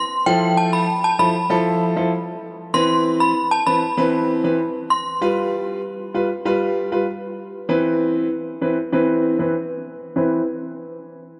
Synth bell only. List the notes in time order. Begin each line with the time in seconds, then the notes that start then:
0.26 G5
0.57 A5
0.73 B5
1.04 A5
1.19 B5
2.74 C6
3.20 B5
3.51 A5
3.67 B5
4.90 C6